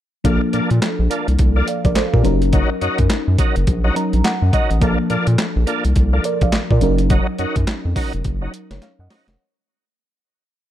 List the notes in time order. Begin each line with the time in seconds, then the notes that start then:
0.24 A#1 F3 A#3 D4 F4 A4, kick, closed hi-hat
0.53 A#2 A#3 D4 F4 A4, closed hi-hat
0.70 A#2, closed hi-hat
0.82 snare, clap, closed hi-hat
0.99 A#1
1.10 A#3 D4 F4 A4, closed hi-hat
1.28 C2, closed hi-hat
1.39 C2, kick, closed hi-hat
1.56 A#3 D4 F4 A4
1.68 D5 F5, closed hi-hat
1.85 A#1 A#4 D5, kick, closed hi-hat
1.96 A4 C5, snare, clap, closed hi-hat
2.13 A#2 G4 A#4, kick
2.23 F#1 F#3 C#4 D#4 A#4, closed hi-hat
2.42 closed hi-hat
2.53 C#4 D#4 F#4 A#4, kick, closed hi-hat
2.81 F#2 C#4 D#4 F#4 A#4, closed hi-hat
2.98 F#2, kick, closed hi-hat
3.10 snare, clap, closed hi-hat
3.28 F#2
3.38 C#4 D#4 F#4 A#4, kick, closed hi-hat
3.56 F#1, closed hi-hat
3.67 A#1, kick, closed hi-hat
3.84 C#4 D#4 F#4 A#4
3.96 F#3 C#4 D#4 A#4 A#5, closed hi-hat
4.13 A#1, closed hi-hat
4.25 F#5, snare, clap, closed hi-hat
4.42 F#2
4.53 C#4 D#4 F#4 A#4 D#5, kick, closed hi-hat
4.71 A1, closed hi-hat
4.80 A#1 F3 A#3 D4 F4 A4, kick, closed hi-hat
5.10 A#2 A#3 D4 F4 A4, closed hi-hat
5.27 A#2, closed hi-hat
5.38 snare, clap, closed hi-hat
5.56 A#1
5.67 A#3 D4 F4 A4, closed hi-hat
5.85 C2, closed hi-hat
5.96 C2, kick, closed hi-hat
6.13 A#3 D4 F4 A4
6.24 A#4 D5, closed hi-hat
6.41 A#1 D5 F5, kick, closed hi-hat
6.53 snare, clap, closed hi-hat
6.71 A#2 A#4 D5, kick
6.81 F#1 F#3 C#4 D#4 A#4, closed hi-hat
6.98 closed hi-hat
7.10 C#4 D#4 F#4 A#4, kick, closed hi-hat
7.39 F#2 C#4 D#4 F#4 A#4, closed hi-hat
7.56 F#2, kick, closed hi-hat
7.67 snare, clap, closed hi-hat
7.85 F2
7.96 C#4 D#4 F#4 A#4, kick, open hi-hat
8.13 F1, closed hi-hat
8.24 F#1, kick, closed hi-hat
8.42 C#4 D#4 F#4 A#4
8.54 closed hi-hat
8.71 F#1 A#4 C#5, snare, closed hi-hat
8.82 C#5 F5, snare, closed hi-hat
8.99 F#2 D#5 F#5
9.10 C#4 D#4 F#4 A#4 C5 D#5, snare, open hi-hat
9.28 F1 A#4 C#5, snare, closed hi-hat